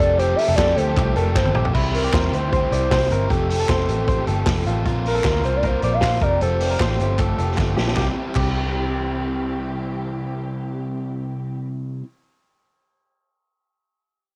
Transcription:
Already playing: soft synth lead D5
0.00 picked electric bass F1, string section F3 A3 G4, overdriven electric guitar C4 G4 A4, clean electric guitar A4, hi-hat pedal
0.18 overdriven electric guitar F3 C4 G4 A4, clean electric guitar G4, soft synth lead C5, hi-hat pedal, open hi-hat
0.36 overdriven electric guitar G4 A4, soft synth lead E5, hi-hat pedal, open hi-hat
0.41 overdriven electric guitar C4
0.48 picked electric bass F1, clean electric guitar A4
0.56 picked electric bass F2, overdriven electric guitar F3 C4 G4 A4, clean electric guitar A4, soft synth lead D5, kick, snare, clap, hi-hat pedal, open hi-hat
0.76 picked electric bass D2, overdriven electric guitar C4 G4 A4, soft synth lead C5, hi-hat pedal, open hi-hat
0.96 picked electric bass C2, overdriven electric guitar F3 C4 G4 A4, clean electric guitar G4, kick, clap, hi-hat pedal, open hi-hat
1.16 picked electric bass F1, overdriven electric guitar C4 G4 A4, clean electric guitar A4, soft synth lead A#4, hi-hat pedal, open hi-hat
1.35 picked electric bass G1, overdriven electric guitar F3 C4 G4 A4, soft synth lead C5, kick, snare, clap
1.45 high tom
1.55 picked electric bass A#1, overdriven electric guitar C4 G4 A4, clean electric guitar G4, mid tom
1.65 floor tom
1.74 picked electric bass C2, overdriven electric guitar C3 G3 C4 E4 C5, string section E3 C4 G4, clean electric guitar E4, kick, crash
1.92 overdriven electric guitar C4 E4 C5, soft synth lead A#4, hi-hat pedal, open hi-hat
2.04 clean electric guitar G4
2.12 picked electric bass E2, overdriven electric guitar C3 G3 C4 E4 C5, clean electric guitar C5, kick, snare, clap, hi-hat pedal, open hi-hat
2.31 picked electric bass D2, overdriven electric guitar C4 E4 C5, soft synth lead C5, hi-hat pedal, open hi-hat
2.51 overdriven electric guitar G3 C4 E4 C5, clean electric guitar C5, kick, hi-hat pedal, open hi-hat
2.70 picked electric bass C2, overdriven electric guitar C4 E4 C5, soft synth lead C5, clean electric guitar D5, hi-hat pedal, open hi-hat
2.90 picked electric bass C2, overdriven electric guitar C3 G3 C4 E4 C5, clean electric guitar C5, kick, snare, clap, hi-hat pedal, open hi-hat
3.10 picked electric bass G1, overdriven electric guitar C4 E4 C5, clean electric guitar A#4, hi-hat pedal, open hi-hat
3.29 picked electric bass F1, overdriven electric guitar F3 C4 G4 A4, string section F3 A3 G4, clean electric guitar G4, soft synth lead A4, kick, hi-hat pedal, open hi-hat
3.49 overdriven electric guitar C4 G4 A4, hi-hat pedal, open hi-hat
3.60 clean electric guitar A4
3.69 picked electric bass F1, overdriven electric guitar F3 C4 G4 A4, clean electric guitar C5, kick, snare, clap
3.87 picked electric bass A1, overdriven electric guitar C4 G4 A4, hi-hat pedal, open hi-hat
4.07 overdriven electric guitar F3 C4 G4 A4, clean electric guitar C5, kick, hi-hat pedal, open hi-hat
4.27 picked electric bass G1, overdriven electric guitar C4 G4 A4, clean electric guitar A4, hi-hat pedal, open hi-hat
4.46 picked electric bass F1, overdriven electric guitar F3 C4 G4 A4, kick, snare, clap, hi-hat pedal, open hi-hat
4.66 picked electric bass A1, overdriven electric guitar C4 G4 A4, clean electric guitar F4, hi-hat pedal, open hi-hat
4.85 picked electric bass A#1, string section C3 A#3 F4, overdriven electric guitar A#3 C4 F4 A#4, clean electric guitar F4, kick, hi-hat pedal, open hi-hat
5.04 overdriven electric guitar C4 F4 A#4, soft synth lead A#4, hi-hat pedal, open hi-hat
5.15 clean electric guitar A4
5.24 picked electric bass D2, overdriven electric guitar A#3 C4 F4 A#4, clean electric guitar A#4, kick, snare, clap
5.43 picked electric bass C2, overdriven electric guitar C4 F4 A#4, soft synth lead C5, hi-hat pedal, open hi-hat
5.56 soft synth lead D5
5.62 overdriven electric guitar A#3 C4 F4 A#4, clean electric guitar A#4, kick, hi-hat pedal, open hi-hat
5.66 soft synth lead C5
5.82 picked electric bass A#1, overdriven electric guitar C4 F4 A#4, clean electric guitar D5, hi-hat pedal, open hi-hat
5.93 soft synth lead F5
6.01 picked electric bass A#1, overdriven electric guitar A#3 C4 F4 A#4, clean electric guitar C5, kick, snare, clap, hi-hat pedal, open hi-hat
6.20 picked electric bass F1, string section F3 A3 G4, overdriven electric guitar C4 F4 G4, clean electric guitar A#4, soft synth lead D5, kick, hi-hat pedal, open hi-hat
6.41 picked electric bass F1, overdriven electric guitar F3 A3 C4 F4 G4, clean electric guitar A4, soft synth lead C5, hi-hat pedal, open hi-hat
6.60 overdriven electric guitar C4 F4 G4, hi-hat pedal, open hi-hat
6.71 clean electric guitar A#4
6.79 picked electric bass A1, overdriven electric guitar F3 A3 C4 F4 G4, clean electric guitar C5, kick, snare, clap, hi-hat pedal, open hi-hat
6.98 picked electric bass G1, overdriven electric guitar C4 F4 G4, hi-hat pedal, open hi-hat
7.19 overdriven electric guitar A3 C4 F4 G4, clean electric guitar A4, kick, clap, hi-hat pedal, open hi-hat
7.36 picked electric bass F1, overdriven electric guitar C4 F4 G4, clean electric guitar A4, hi-hat pedal, open hi-hat
7.57 picked electric bass G1, overdriven electric guitar F3 A3 C4 F4 G4, kick, snare, clap
7.77 picked electric bass A#1, overdriven electric guitar F4 G4, clean electric guitar G4, snare
7.81 overdriven electric guitar C4
7.88 snare
7.96 picked electric bass C2, overdriven electric guitar C3 G3 C4, string section E3 C4 G4, clean electric guitar G4, kick, snare, clap
8.00 overdriven electric guitar E4 G4
8.34 picked electric bass C2, overdriven electric guitar C3 G3 C4, clean electric guitar G4, kick, clap, crash
8.39 overdriven electric guitar E4 G4

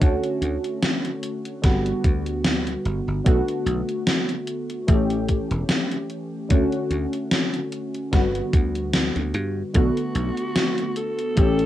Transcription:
0.00 slap bass D2, synth keys D3 A3 C#4 F#4, kick, closed hi-hat
0.24 closed hi-hat
0.42 slap bass D2, closed hi-hat
0.64 closed hi-hat
0.83 snare, closed hi-hat
1.05 closed hi-hat
1.23 closed hi-hat
1.45 closed hi-hat
1.62 slap bass G1, synth keys D3 G3 B3 F#4, kick, snare, closed hi-hat
1.86 closed hi-hat
2.04 slap bass D2, kick, closed hi-hat
2.26 closed hi-hat
2.45 snare, closed hi-hat
2.67 closed hi-hat
2.85 slap bass G1, closed hi-hat
3.08 slap bass G1
3.24 slap bass B1, synth keys D3 A3 B3 F#4, kick, closed hi-hat
3.48 closed hi-hat
3.66 slap bass B1, closed hi-hat
3.89 closed hi-hat
4.07 snare, closed hi-hat
4.29 closed hi-hat
4.47 closed hi-hat
4.70 closed hi-hat
4.87 slap bass A1, synth keys E3 A3 C#4 G4, kick, closed hi-hat
5.10 closed hi-hat
5.28 kick, closed hi-hat
5.51 slap bass E1, closed hi-hat
5.69 snare, closed hi-hat
5.91 closed hi-hat
6.10 closed hi-hat
6.49 slap bass D2, synth keys D3 A3 C#4 F#4, kick, closed hi-hat
6.72 closed hi-hat
6.90 slap bass D2, closed hi-hat
7.13 closed hi-hat
7.31 snare, closed hi-hat
7.54 closed hi-hat
7.72 closed hi-hat
7.94 closed hi-hat
8.11 slap bass G1, synth keys D3 G3 B3 F#4, kick, snare, closed hi-hat
8.35 closed hi-hat
8.53 slap bass D2, kick, closed hi-hat
8.75 closed hi-hat
8.94 snare, closed hi-hat
9.16 slap bass D2, closed hi-hat
9.34 slap bass G2, closed hi-hat
9.74 slap bass B1, synth keys D3 A3 B3 F#4, alto saxophone F#4, kick, closed hi-hat
9.97 closed hi-hat
10.15 slap bass B1, closed hi-hat
10.37 closed hi-hat
10.56 snare, closed hi-hat
10.78 closed hi-hat
10.96 alto saxophone A4, closed hi-hat
11.19 closed hi-hat
11.36 slap bass A1, synth keys E3 A3 C#4 G4, kick, closed hi-hat
11.59 closed hi-hat

